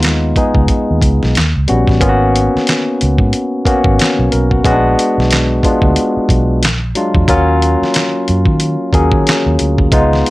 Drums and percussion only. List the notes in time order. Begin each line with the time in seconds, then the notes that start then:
0.03 snare, clap, closed hi-hat
0.36 kick, closed hi-hat
0.55 kick
0.68 kick, closed hi-hat
1.02 kick, closed hi-hat
1.23 snare
1.35 snare, clap, closed hi-hat
1.68 closed hi-hat
1.88 kick, snare
2.01 kick, closed hi-hat
2.36 closed hi-hat
2.57 snare
2.67 snare, clap, closed hi-hat
3.01 closed hi-hat
3.18 kick
3.33 closed hi-hat
3.65 kick, closed hi-hat
3.84 kick
3.99 snare, clap, closed hi-hat
4.32 closed hi-hat
4.51 kick
4.65 kick, closed hi-hat
4.99 closed hi-hat
5.20 snare
5.31 snare, clap, closed hi-hat
5.63 kick, closed hi-hat
5.82 kick
5.96 closed hi-hat
6.29 kick, closed hi-hat
6.63 snare, clap, closed hi-hat
6.95 closed hi-hat
7.15 kick
7.28 kick, closed hi-hat
7.62 closed hi-hat
7.83 snare
7.94 snare, clap, closed hi-hat
8.28 closed hi-hat
8.45 kick
8.60 closed hi-hat
8.93 kick, closed hi-hat
9.12 kick
9.27 snare, clap, closed hi-hat
9.59 closed hi-hat
9.78 kick
9.92 kick, closed hi-hat
10.13 snare
10.26 closed hi-hat